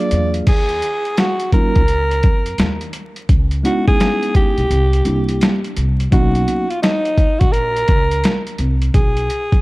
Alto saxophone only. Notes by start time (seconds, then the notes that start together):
0.00 D5
0.48 G#4
1.19 F#4
1.54 A#4
3.65 F#4
3.88 G#4
4.36 G4
6.12 F#4
6.70 F4
6.82 D#4
7.40 F#4
7.52 A#4
8.95 G#4